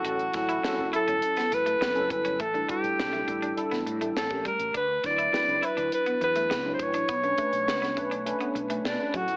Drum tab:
HH |xxxx--xxxxxx-xxx|xxxx-xxxxxxx-xxx|x-xx-xxxxxxx--xx|xxxx-xxxxxxx--xx|
SD |--o-o----o--o---|----o----o--o---|--o-o-------o---|----oo------o---|
BD |--o-----------o-|o-o---o------oo-|o-o-----------o-|o-o---o-------o-|